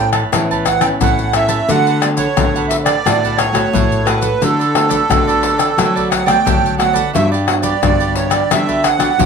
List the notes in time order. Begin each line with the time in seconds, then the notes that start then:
Already playing: A2 E3 B4 C#5 A5
0.13 B4 C#5 A5, pandeiro, tamborim, maracas
0.32 A2 E3 B3 C#4 A4 B4 C#5 A5, pandeiro, tamborim, maracas, surdo
0.51 B4 C#5 A5, pandeiro, maracas, surdo
0.65 F#5, muted cavaquinho stroke, pandeiro, tamborim, maracas, surdo
0.80 E3 B3 C#4 B4 C#5 G5 A5, pandeiro, tamborim, maracas, surdo
1.01 A2 E3 A4 B4 C#5 F#5 A5, pandeiro, maracas, surdo
1.19 pandeiro, maracas
1.33 E3 B3 C#4 A4 B4 C#5 E5 A5, pandeiro, tamborim, maracas
1.49 B4 C#5 A5, pandeiro, maracas, surdo
1.68 D3 A3 B3 D4 F#4 A4 B4 F#5, pandeiro, maracas, surdo
1.87 A4 B4 F#5, pandeiro, maracas
2.01 A3 B3 F#4 D5, muted cavaquinho stroke, pandeiro, tamborim, maracas
2.17 A4 B4 C#5 F#5, pandeiro, maracas, surdo
2.37 A2 D3 A3 B3 D4 F#4 A4 B4 F#5, pandeiro, tamborim, maracas, surdo
2.56 A4 B4 F#5, pandeiro, maracas
2.68 E5, pandeiro, maracas
2.84 A4 B4 D5 F#5, pandeiro, tamborim, maracas
3.05 A2 D3 A3 B3 D4 F#4 A4 B4 F#5, pandeiro, tamborim, maracas, surdo
3.23 A4 B4 F#5, pandeiro, maracas, surdo
3.37 C#5, muted cavaquinho stroke, pandeiro, tamborim, maracas, surdo
3.53 A3 B3 F#4 A4 B4 F#5, pandeiro, tamborim, maracas, surdo
3.73 A2 D4 A4 B4 F#5, pandeiro, maracas, surdo
3.92 pandeiro, maracas
4.05 A3 B3 D4 F#4 A4 B4 F#5, pandeiro, tamborim, maracas
4.21 A4 B4 F#5, pandeiro, maracas, surdo
4.41 D3 A3 B3 D4 F#4 A4 B4 D5, pandeiro, maracas, surdo
4.59 A4 B4 D5, pandeiro, maracas
4.75 A3 B3 F#4, muted cavaquinho stroke, pandeiro, tamborim
4.89 A4 B4 D5, pandeiro, maracas, surdo
5.10 D3 A3 B3 D4 F#4 A4 B4 D5, pandeiro, tamborim, maracas, surdo
5.27 A4 B4 D5, pandeiro, maracas
5.43 pandeiro
5.58 A4 B4 D5, pandeiro, tamborim, maracas
5.77 D3 F#3 A3 B3 D4 F#4 A4 B4 D5, pandeiro, tamborim, maracas, surdo
5.96 A4 B4 D5, pandeiro, maracas, surdo
6.10 F#5, muted cavaquinho stroke, pandeiro, tamborim, maracas, surdo
6.26 A3 B3 A4 B4 D5 G5, pandeiro, tamborim, maracas, surdo
6.45 D3 F#3 D4 A4 B4 D5, pandeiro, maracas, surdo
6.66 pandeiro, maracas
6.78 A3 B3 D4 F#4 A4 B4 D5 F#5, pandeiro, tamborim
6.93 A4 B4 D5, pandeiro, maracas, surdo
7.13 G2 G3 B3 D4 F#4 G4 B4 D5 E5, pandeiro, maracas, surdo
7.32 G4 B4 D5, pandeiro, maracas
7.47 B3 D4 F#4 F#5, muted cavaquinho stroke, pandeiro, tamborim
7.62 G4 B4 D5, pandeiro, maracas, surdo
7.82 G2 D3 B3 D4 F#4 G4 B4 D5, pandeiro, tamborim, maracas, surdo
8.00 G4 B4 D5, pandeiro, maracas
8.16 C#5, pandeiro
8.30 G4 B4 D5, pandeiro, tamborim, maracas
8.50 D3 G3 B3 D4 F#4 G4 B4 D5 E5, pandeiro, tamborim, maracas, surdo
8.68 G4 B4 D5, pandeiro, maracas, surdo
8.84 F#5, muted cavaquinho stroke, pandeiro, tamborim, maracas, surdo
8.99 B3 D4 F#4 G4 B4 D5, pandeiro, tamborim, maracas, surdo
9.18 G2 D3 B3 D4 F#4 G4 B4 D5, pandeiro, maracas, surdo